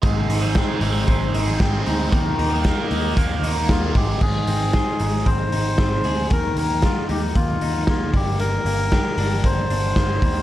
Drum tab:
CC |--------|--------|x-------|--------|
HH |xoxoxoxo|xoxoxoxo|-oxoxoxo|xoxoxoxo|
SD |--o---o-|--o---o-|--o---o-|--o---o-|
BD |o-o-o-o-|o-o-o-oo|o-o-o-o-|o-o-o-oo|

CC |--------|
HH |xoxoxoxo|
SD |--o---o-|
BD |--o-o-oo|